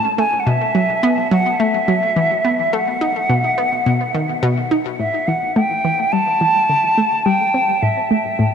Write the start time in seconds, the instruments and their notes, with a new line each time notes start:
Already playing: flute A5
0.18 synth arpeggio sound A3, flute G#5
0.40 flute F#5
0.47 synth arpeggio sound B2, flute E5
0.75 synth arpeggio sound F#3
1.03 synth arpeggio sound B3
1.31 synth arpeggio sound F#3, flute F#5
1.60 synth arpeggio sound A3, flute E5
1.88 synth arpeggio sound F#3
2.16 synth arpeggio sound E3
2.45 synth arpeggio sound B3
2.73 synth arpeggio sound A3, flute F#5
3.01 synth arpeggio sound D#4
3.30 synth arpeggio sound B2
3.58 synth arpeggio sound B3
3.86 synth arpeggio sound B2
4.15 synth arpeggio sound D#3
4.43 synth arpeggio sound B2
4.71 synth arpeggio sound D#4
4.99 synth arpeggio sound A2, flute E5
5.27 synth arpeggio sound E3, flute F#5
5.56 synth arpeggio sound A3, flute G5
5.84 synth arpeggio sound E3
6.12 synth arpeggio sound G3, flute A5
6.41 synth arpeggio sound E3
6.69 synth arpeggio sound D3
6.98 synth arpeggio sound A3
7.26 synth arpeggio sound G3, flute G5
7.54 synth arpeggio sound C4
7.82 synth arpeggio sound A2, flute E5
8.11 synth arpeggio sound A3
8.39 synth arpeggio sound A2